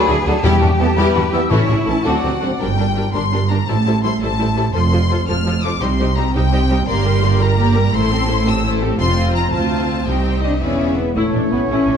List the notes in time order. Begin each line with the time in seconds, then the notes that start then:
Already playing: G#4 B4 B5
0.08 D2 F#3 D4 E4 G#4
0.26 D2 F#3 D4 F#4 A4 A5
0.43 E2 G3 B3 E4 G4 G5
0.61 E2 G3 B3 D4 F#4
0.79 E2 E3 G3 B3 E4 G4 A4 A5
0.97 E2 G3 B3 E4 G4 B4 B5
1.15 E2 G3 B3 D4 F#4
1.32 E2 E3 G3 B3 E4 G4 E5 E6
1.50 A1 A2 E3 C#4 E4 A4 C#5 C#6
1.68 A1 E3 C#4 D4 G#4
1.85 A1 E3 C#4 E4 A4 A5
1.89 C#4
2.04 D2 F#3 C4 D4 F#4 A4 D5 F#5 D6
2.23 D2 F#3 C4 G4
2.41 D2 F#3 C4 D4 A4
2.59 G1 G2 G3 D4 A#4 G5
2.78 G3 D4 A#4
2.96 G3 D4 A#4
3.14 G1 G2 G3 D4 A#4 C6
3.32 G3 D4 A#4
3.50 G3 D4 A#4 A#5
3.67 A1 A2 G3 E4 A4 C5 A5
3.87 G3 E4 A4 C5
4.04 G3 E4 A4 C5 C6
4.21 A1 A2 G3 E4 A4 C5 A5
4.39 G3 E4 A4 C5
4.57 G3 E4 A4 C5
4.73 F1 F2 F3 F4 A4 C5 C6
4.92 F3 F4 A4 C5
5.11 F3 F4 A4 C5
5.28 F1 F2 F3 F4 A4 C5 F6
5.46 F3 F4 A4 C5
5.64 F3 F4 A4 C5 D6
5.81 C2 C3 G3 D#4 G4 C5 C6
5.99 G3 D#4 G4 C5
6.16 G3 D#4 G4 C5 A#5
6.34 C2 C3 G3 D#4 G4 C5 G5
6.52 G3 D#4 G4 C5
6.69 G3 D#4 G4 C5
6.87 G1 G2 A#3 G4 A#4 D5 C6
7.05 G3 G4 A#4
7.23 A#3 G4 A#4 D5
7.41 G3 G4 A#4 A#5
7.59 A#3 G4 A#4 D5
7.76 G3 G4 A#4
7.93 A1 A2 A3 E4 A4 C5 C6
8.12 C4 G4 A4
8.29 A3 E4 A4 C5
8.47 C4 G4 A4 E6
8.65 A3 E4 A4 C5
8.82 C4 G4 A4
9.00 F1 F2 C4 F4 C5 C6
9.36 A#5
9.52 D2 C4 F4 C5 A5
10.07 C2 C3 C4 D#4 G4 C5 G5
10.43 D4 D#5
10.61 E1 E2 C#3 B3 C#4 E4 G#4 D5 E5
10.98 B3
11.16 A1 E3 A3 C#4 E4 A4 C#5 E5
11.34 A1 D4
11.51 A1 B3 E4
11.69 A1 C#4 E4
11.87 A1 D4